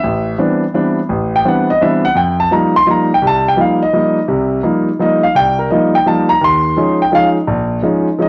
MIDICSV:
0, 0, Header, 1, 2, 480
1, 0, Start_track
1, 0, Tempo, 354400
1, 42, Time_signature, 3, 2, 24, 8
1, 11225, End_track
2, 0, Start_track
2, 0, Title_t, "Grand piano"
2, 0, Program_c, 0, 0
2, 0, Note_on_c, 0, 76, 90
2, 48, Note_on_c, 0, 33, 64
2, 460, Note_off_c, 0, 33, 0
2, 490, Note_off_c, 0, 76, 0
2, 516, Note_on_c, 0, 52, 58
2, 520, Note_on_c, 0, 55, 49
2, 520, Note_on_c, 0, 59, 53
2, 528, Note_on_c, 0, 60, 49
2, 530, Note_on_c, 0, 62, 60
2, 847, Note_off_c, 0, 52, 0
2, 849, Note_off_c, 0, 55, 0
2, 849, Note_off_c, 0, 59, 0
2, 853, Note_off_c, 0, 60, 0
2, 854, Note_off_c, 0, 62, 0
2, 1004, Note_on_c, 0, 52, 53
2, 1006, Note_on_c, 0, 55, 52
2, 1011, Note_on_c, 0, 59, 48
2, 1012, Note_on_c, 0, 60, 49
2, 1013, Note_on_c, 0, 62, 64
2, 1331, Note_off_c, 0, 52, 0
2, 1332, Note_off_c, 0, 55, 0
2, 1334, Note_off_c, 0, 59, 0
2, 1335, Note_off_c, 0, 60, 0
2, 1335, Note_off_c, 0, 62, 0
2, 1479, Note_on_c, 0, 33, 67
2, 1837, Note_on_c, 0, 79, 86
2, 1895, Note_off_c, 0, 33, 0
2, 1962, Note_on_c, 0, 52, 53
2, 1965, Note_on_c, 0, 55, 49
2, 1965, Note_on_c, 0, 59, 53
2, 1966, Note_on_c, 0, 60, 53
2, 1975, Note_on_c, 0, 62, 61
2, 1978, Note_off_c, 0, 79, 0
2, 2009, Note_on_c, 0, 78, 66
2, 2288, Note_off_c, 0, 78, 0
2, 2289, Note_off_c, 0, 52, 0
2, 2291, Note_off_c, 0, 55, 0
2, 2291, Note_off_c, 0, 59, 0
2, 2291, Note_off_c, 0, 60, 0
2, 2296, Note_off_c, 0, 62, 0
2, 2304, Note_on_c, 0, 75, 87
2, 2446, Note_on_c, 0, 55, 51
2, 2450, Note_on_c, 0, 52, 56
2, 2451, Note_off_c, 0, 75, 0
2, 2455, Note_on_c, 0, 60, 50
2, 2457, Note_on_c, 0, 62, 63
2, 2458, Note_on_c, 0, 59, 50
2, 2466, Note_on_c, 0, 76, 76
2, 2756, Note_off_c, 0, 76, 0
2, 2772, Note_off_c, 0, 55, 0
2, 2772, Note_on_c, 0, 78, 98
2, 2773, Note_off_c, 0, 52, 0
2, 2776, Note_off_c, 0, 60, 0
2, 2777, Note_off_c, 0, 59, 0
2, 2777, Note_off_c, 0, 62, 0
2, 2913, Note_on_c, 0, 41, 58
2, 2926, Note_off_c, 0, 78, 0
2, 2933, Note_on_c, 0, 79, 79
2, 3229, Note_off_c, 0, 79, 0
2, 3249, Note_on_c, 0, 81, 87
2, 3331, Note_off_c, 0, 41, 0
2, 3400, Note_on_c, 0, 53, 57
2, 3404, Note_off_c, 0, 81, 0
2, 3405, Note_on_c, 0, 55, 50
2, 3409, Note_on_c, 0, 58, 45
2, 3418, Note_on_c, 0, 82, 73
2, 3420, Note_on_c, 0, 63, 56
2, 3711, Note_off_c, 0, 82, 0
2, 3729, Note_off_c, 0, 53, 0
2, 3731, Note_off_c, 0, 55, 0
2, 3733, Note_off_c, 0, 58, 0
2, 3738, Note_off_c, 0, 63, 0
2, 3742, Note_on_c, 0, 84, 114
2, 3876, Note_on_c, 0, 53, 53
2, 3883, Note_on_c, 0, 58, 47
2, 3885, Note_on_c, 0, 55, 47
2, 3890, Note_on_c, 0, 63, 59
2, 3891, Note_off_c, 0, 84, 0
2, 3937, Note_on_c, 0, 82, 83
2, 4207, Note_off_c, 0, 53, 0
2, 4210, Note_off_c, 0, 58, 0
2, 4211, Note_off_c, 0, 55, 0
2, 4212, Note_off_c, 0, 82, 0
2, 4213, Note_off_c, 0, 63, 0
2, 4255, Note_on_c, 0, 79, 87
2, 4358, Note_on_c, 0, 36, 67
2, 4388, Note_off_c, 0, 79, 0
2, 4431, Note_on_c, 0, 81, 98
2, 4699, Note_off_c, 0, 81, 0
2, 4719, Note_on_c, 0, 79, 89
2, 4774, Note_off_c, 0, 36, 0
2, 4830, Note_on_c, 0, 53, 55
2, 4832, Note_on_c, 0, 55, 47
2, 4838, Note_on_c, 0, 58, 47
2, 4839, Note_on_c, 0, 63, 56
2, 4859, Note_off_c, 0, 79, 0
2, 4889, Note_on_c, 0, 77, 73
2, 5163, Note_off_c, 0, 53, 0
2, 5164, Note_off_c, 0, 55, 0
2, 5167, Note_off_c, 0, 58, 0
2, 5167, Note_off_c, 0, 77, 0
2, 5168, Note_off_c, 0, 63, 0
2, 5183, Note_on_c, 0, 75, 81
2, 5326, Note_on_c, 0, 53, 50
2, 5327, Note_on_c, 0, 55, 47
2, 5330, Note_on_c, 0, 58, 49
2, 5335, Note_on_c, 0, 63, 60
2, 5652, Note_off_c, 0, 53, 0
2, 5652, Note_off_c, 0, 55, 0
2, 5654, Note_off_c, 0, 58, 0
2, 5656, Note_off_c, 0, 63, 0
2, 5693, Note_off_c, 0, 75, 0
2, 5799, Note_on_c, 0, 48, 65
2, 5801, Note_on_c, 0, 36, 64
2, 6215, Note_off_c, 0, 36, 0
2, 6215, Note_off_c, 0, 48, 0
2, 6273, Note_on_c, 0, 58, 53
2, 6275, Note_on_c, 0, 55, 47
2, 6276, Note_on_c, 0, 53, 53
2, 6280, Note_on_c, 0, 63, 59
2, 6605, Note_off_c, 0, 58, 0
2, 6606, Note_off_c, 0, 55, 0
2, 6607, Note_off_c, 0, 53, 0
2, 6608, Note_off_c, 0, 63, 0
2, 6764, Note_on_c, 0, 53, 55
2, 6773, Note_on_c, 0, 55, 44
2, 6775, Note_on_c, 0, 58, 51
2, 6779, Note_on_c, 0, 63, 58
2, 6800, Note_on_c, 0, 75, 78
2, 7083, Note_off_c, 0, 75, 0
2, 7089, Note_on_c, 0, 77, 85
2, 7090, Note_off_c, 0, 53, 0
2, 7095, Note_off_c, 0, 55, 0
2, 7096, Note_off_c, 0, 58, 0
2, 7098, Note_off_c, 0, 63, 0
2, 7244, Note_off_c, 0, 77, 0
2, 7244, Note_on_c, 0, 36, 66
2, 7262, Note_on_c, 0, 79, 105
2, 7554, Note_off_c, 0, 79, 0
2, 7570, Note_on_c, 0, 70, 60
2, 7657, Note_off_c, 0, 36, 0
2, 7724, Note_off_c, 0, 70, 0
2, 7728, Note_on_c, 0, 75, 71
2, 7739, Note_on_c, 0, 53, 58
2, 7739, Note_on_c, 0, 55, 52
2, 7748, Note_on_c, 0, 58, 52
2, 7748, Note_on_c, 0, 63, 63
2, 8026, Note_off_c, 0, 75, 0
2, 8058, Note_off_c, 0, 53, 0
2, 8058, Note_off_c, 0, 55, 0
2, 8059, Note_on_c, 0, 79, 88
2, 8062, Note_off_c, 0, 58, 0
2, 8062, Note_off_c, 0, 63, 0
2, 8209, Note_off_c, 0, 79, 0
2, 8209, Note_on_c, 0, 53, 49
2, 8210, Note_on_c, 0, 55, 50
2, 8210, Note_on_c, 0, 58, 49
2, 8224, Note_on_c, 0, 63, 54
2, 8227, Note_on_c, 0, 81, 75
2, 8516, Note_off_c, 0, 81, 0
2, 8521, Note_on_c, 0, 82, 93
2, 8533, Note_off_c, 0, 53, 0
2, 8533, Note_off_c, 0, 55, 0
2, 8534, Note_off_c, 0, 58, 0
2, 8541, Note_off_c, 0, 63, 0
2, 8680, Note_off_c, 0, 82, 0
2, 8681, Note_on_c, 0, 39, 61
2, 8726, Note_on_c, 0, 84, 101
2, 9095, Note_off_c, 0, 39, 0
2, 9163, Note_on_c, 0, 53, 50
2, 9165, Note_on_c, 0, 61, 52
2, 9172, Note_on_c, 0, 56, 48
2, 9173, Note_on_c, 0, 63, 61
2, 9440, Note_off_c, 0, 84, 0
2, 9490, Note_off_c, 0, 53, 0
2, 9491, Note_off_c, 0, 61, 0
2, 9494, Note_off_c, 0, 56, 0
2, 9495, Note_off_c, 0, 63, 0
2, 9506, Note_on_c, 0, 79, 80
2, 9640, Note_on_c, 0, 53, 54
2, 9643, Note_on_c, 0, 61, 48
2, 9645, Note_on_c, 0, 63, 60
2, 9649, Note_on_c, 0, 56, 48
2, 9652, Note_off_c, 0, 79, 0
2, 9681, Note_on_c, 0, 77, 99
2, 9855, Note_off_c, 0, 77, 0
2, 9968, Note_off_c, 0, 53, 0
2, 9970, Note_off_c, 0, 61, 0
2, 9971, Note_off_c, 0, 63, 0
2, 9972, Note_off_c, 0, 56, 0
2, 10121, Note_on_c, 0, 34, 72
2, 10535, Note_off_c, 0, 34, 0
2, 10596, Note_on_c, 0, 53, 59
2, 10608, Note_on_c, 0, 56, 50
2, 10611, Note_on_c, 0, 61, 49
2, 10611, Note_on_c, 0, 63, 60
2, 10926, Note_off_c, 0, 53, 0
2, 10932, Note_off_c, 0, 56, 0
2, 10933, Note_off_c, 0, 61, 0
2, 10933, Note_off_c, 0, 63, 0
2, 11085, Note_on_c, 0, 53, 55
2, 11091, Note_on_c, 0, 56, 52
2, 11093, Note_on_c, 0, 61, 51
2, 11102, Note_on_c, 0, 63, 58
2, 11136, Note_on_c, 0, 75, 80
2, 11225, Note_off_c, 0, 53, 0
2, 11225, Note_off_c, 0, 56, 0
2, 11225, Note_off_c, 0, 61, 0
2, 11225, Note_off_c, 0, 63, 0
2, 11225, Note_off_c, 0, 75, 0
2, 11225, End_track
0, 0, End_of_file